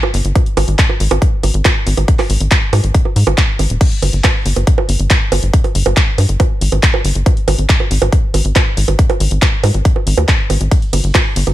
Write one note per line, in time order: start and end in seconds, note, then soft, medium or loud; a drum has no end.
0.03 high bongo medium
0.14 0.22 G1 loud
0.14 open hi-hat loud
0.25 0.32 G1 medium
0.25 closed hi-hat medium
0.35 kick loud
0.35 closed hi-hat medium
0.35 high bongo soft
0.46 closed hi-hat soft
0.57 0.65 G#1 medium
0.57 open hi-hat loud
0.57 high bongo medium
0.68 0.76 G#1 medium
0.68 closed hi-hat medium
0.79 kick loud
0.79 clap loud
0.79 closed hi-hat medium
0.89 high bongo soft
1.00 1.08 G#1 loud
1.00 open hi-hat loud
1.11 1.19 G#1 medium
1.11 closed hi-hat medium
1.11 high bongo medium
1.22 kick loud
1.22 closed hi-hat medium
1.43 1.51 G#1 medium
1.43 open hi-hat loud
1.43 high bongo soft
1.54 1.62 G#1 medium
1.54 closed hi-hat medium
1.65 kick loud
1.65 clap loud
1.65 closed hi-hat medium
1.65 high bongo medium
1.87 1.94 G#1 loud
1.87 open hi-hat loud
1.97 2.05 G#1 medium
1.97 closed hi-hat medium
1.97 high bongo soft
2.08 kick loud
2.08 closed hi-hat medium
2.19 clap soft
2.19 open hi-hat medium
2.19 high bongo medium
2.30 2.37 G#1 loud
2.30 open hi-hat loud
2.41 2.48 G#1 medium
2.41 closed hi-hat medium
2.51 kick loud
2.51 clap loud
2.51 closed hi-hat medium
2.51 high bongo soft
2.73 2.81 G#2 loud
2.73 open hi-hat loud
2.73 high bongo medium
2.84 2.91 G#1 medium
2.84 closed hi-hat medium
2.94 kick loud
2.94 closed hi-hat medium
3.05 high bongo soft
3.16 3.24 G#2 medium
3.16 open hi-hat loud
3.27 3.35 G#1 medium
3.27 closed hi-hat medium
3.27 high bongo medium
3.38 kick loud
3.38 clap loud
3.38 closed hi-hat medium
3.59 3.67 G#1 loud
3.59 open hi-hat loud
3.59 high bongo soft
3.70 3.78 D#1 medium
3.70 closed hi-hat medium
3.81 kick loud
3.81 closed hi-hat medium
3.81 crash medium
3.92 closed hi-hat soft
4.02 4.10 G1 loud
4.02 open hi-hat loud
4.02 high bongo soft
4.13 4.21 G1 medium
4.13 closed hi-hat medium
4.24 kick loud
4.24 clap loud
4.24 closed hi-hat medium
4.24 high bongo medium
4.46 4.53 G1 medium
4.46 open hi-hat loud
4.56 4.64 G1 medium
4.56 closed hi-hat medium
4.56 high bongo soft
4.67 kick loud
4.67 closed hi-hat medium
4.78 high bongo medium
4.89 4.96 G1 medium
4.89 open hi-hat loud
5.00 5.07 G1 medium
5.00 closed hi-hat medium
5.10 kick loud
5.10 clap loud
5.10 closed hi-hat medium
5.10 high bongo soft
5.32 5.40 G1 loud
5.32 open hi-hat loud
5.32 high bongo medium
5.43 5.50 G1 medium
5.43 closed hi-hat medium
5.54 kick loud
5.54 closed hi-hat medium
5.64 closed hi-hat soft
5.64 high bongo soft
5.75 5.83 G1 loud
5.75 open hi-hat loud
5.86 5.94 G1 medium
5.86 closed hi-hat medium
5.86 high bongo medium
5.97 kick loud
5.97 clap loud
5.97 closed hi-hat medium
6.18 6.26 G2 loud
6.18 open hi-hat loud
6.18 high bongo soft
6.29 6.37 G1 medium
6.29 closed hi-hat medium
6.40 kick loud
6.40 closed hi-hat medium
6.40 high bongo medium
6.61 6.69 G#1 medium
6.61 open hi-hat loud
6.72 6.80 G#1 medium
6.72 closed hi-hat medium
6.72 high bongo soft
6.83 kick loud
6.83 clap loud
6.83 closed hi-hat medium
6.94 high bongo medium
7.05 7.12 G1 loud
7.05 open hi-hat loud
7.15 7.23 G1 medium
7.15 closed hi-hat medium
7.26 kick loud
7.26 closed hi-hat medium
7.26 high bongo soft
7.37 closed hi-hat soft
7.48 7.55 G#1 loud
7.48 open hi-hat loud
7.48 high bongo medium
7.58 7.66 G#1 medium
7.58 closed hi-hat medium
7.69 kick loud
7.69 clap loud
7.69 closed hi-hat medium
7.80 high bongo soft
7.91 7.99 G#1 loud
7.91 open hi-hat loud
8.02 8.09 G#1 medium
8.02 closed hi-hat medium
8.02 high bongo medium
8.12 kick loud
8.12 closed hi-hat medium
8.34 8.42 G#1 loud
8.34 open hi-hat loud
8.34 high bongo soft
8.45 8.53 G#1 medium
8.45 closed hi-hat medium
8.56 kick loud
8.56 clap loud
8.56 closed hi-hat medium
8.56 high bongo medium
8.77 8.85 G#1 loud
8.77 open hi-hat loud
8.88 8.96 G#1 medium
8.88 closed hi-hat medium
8.88 high bongo soft
8.99 kick loud
8.99 closed hi-hat medium
9.10 closed hi-hat soft
9.10 high bongo medium
9.20 9.28 G#1 loud
9.20 open hi-hat loud
9.31 9.39 G#1 medium
9.31 closed hi-hat soft
9.42 kick loud
9.42 clap loud
9.42 closed hi-hat medium
9.42 high bongo soft
9.64 9.71 G#2 medium
9.64 open hi-hat loud
9.64 high bongo medium
9.74 9.82 G#1 medium
9.74 closed hi-hat medium
9.85 kick loud
9.85 closed hi-hat medium
9.96 high bongo soft
10.07 10.14 G#1 medium
10.07 open hi-hat loud
10.18 10.25 D#2 medium
10.18 closed hi-hat medium
10.18 high bongo medium
10.28 kick loud
10.28 clap loud
10.28 closed hi-hat medium
10.50 10.58 G#1 loud
10.50 open hi-hat loud
10.50 high bongo soft
10.61 10.68 G#1 medium
10.61 closed hi-hat medium
10.71 kick loud
10.71 closed hi-hat medium
10.71 ride medium
10.82 closed hi-hat soft
10.93 11.01 G1 loud
10.93 open hi-hat loud
10.93 ride medium
10.93 high bongo soft
11.04 11.12 G1 medium
11.04 closed hi-hat medium
11.15 kick loud
11.15 clap loud
11.15 closed hi-hat medium
11.15 ride medium
11.15 high bongo medium
11.36 11.44 G1 loud
11.36 open hi-hat loud
11.36 ride medium
11.47 11.54 G1 medium
11.47 closed hi-hat medium
11.47 high bongo soft